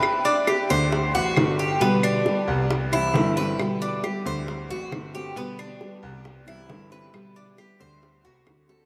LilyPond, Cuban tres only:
\new Staff \with { instrumentName = "Cuban tres" } { \time 4/4 \key g \major \tempo 4 = 135 b'8 d'8 g'8 c''4 fis'4 g'8 | b8 d'4 r4 e'4 b'8~ | b'8 d'8 g'8 c''4 fis'4 g'8 | b8 d'4 r4 e'4 b'8~ |
b'8 d'8 g'8 c''4 fis'4 a'8 | }